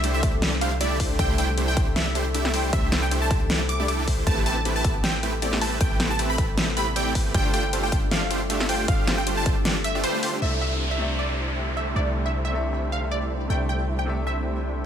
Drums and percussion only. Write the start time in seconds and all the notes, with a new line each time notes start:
0.04 closed hi-hat
0.23 kick, closed hi-hat
0.42 snare, closed hi-hat
0.61 closed hi-hat
0.81 closed hi-hat
1.00 kick, open hi-hat
1.19 kick, closed hi-hat
1.38 closed hi-hat
1.58 closed hi-hat
1.77 kick, closed hi-hat
1.96 snare, closed hi-hat
2.15 closed hi-hat
2.34 closed hi-hat
2.45 snare
2.54 open hi-hat
2.73 kick, closed hi-hat
2.92 snare, closed hi-hat
3.11 closed hi-hat
3.31 kick, closed hi-hat
3.50 snare, closed hi-hat
3.69 closed hi-hat
3.88 closed hi-hat
4.08 kick, open hi-hat
4.27 kick, closed hi-hat
4.46 closed hi-hat
4.65 closed hi-hat
4.84 kick, closed hi-hat
5.04 snare, closed hi-hat
5.23 closed hi-hat
5.42 closed hi-hat
5.53 snare
5.61 open hi-hat
5.81 kick, closed hi-hat
6.00 snare, closed hi-hat
6.19 closed hi-hat
6.38 kick, closed hi-hat
6.58 snare, closed hi-hat
6.77 closed hi-hat
6.96 closed hi-hat
7.15 kick, open hi-hat
7.34 kick, closed hi-hat
7.54 closed hi-hat
7.73 closed hi-hat
7.92 kick, closed hi-hat
8.11 snare, closed hi-hat
8.31 closed hi-hat
8.50 closed hi-hat
8.60 snare
8.69 open hi-hat
8.88 kick, closed hi-hat
9.07 snare, closed hi-hat
9.27 closed hi-hat
9.46 kick, closed hi-hat
9.65 snare, closed hi-hat
9.84 closed hi-hat
10.04 closed hi-hat
10.23 open hi-hat
11.19 finger snap
12.73 finger snap
14.27 finger snap